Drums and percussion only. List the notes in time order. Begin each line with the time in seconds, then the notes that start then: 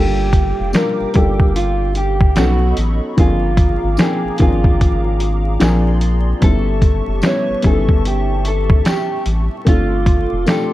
0.33 kick, closed hi-hat
0.73 finger snap, snare, closed hi-hat, tambourine
1.14 kick, closed hi-hat
1.40 kick
1.56 closed hi-hat
1.95 closed hi-hat
2.21 kick
2.36 finger snap, snare, closed hi-hat, tambourine
2.77 closed hi-hat
3.18 kick, closed hi-hat
3.57 kick, closed hi-hat
3.97 finger snap, snare, closed hi-hat, tambourine
4.38 kick, closed hi-hat
4.64 kick
4.81 kick, closed hi-hat
5.20 closed hi-hat
5.60 finger snap, snare, closed hi-hat, tambourine
6.01 closed hi-hat
6.42 kick, closed hi-hat
6.82 kick, closed hi-hat
7.22 finger snap, snare, closed hi-hat, tambourine
7.62 kick, closed hi-hat
7.89 kick
8.05 closed hi-hat
8.45 closed hi-hat
8.70 kick
8.85 finger snap, snare, closed hi-hat, tambourine
9.26 closed hi-hat
9.67 kick, closed hi-hat
10.06 kick, closed hi-hat
10.46 finger snap, snare, closed hi-hat, tambourine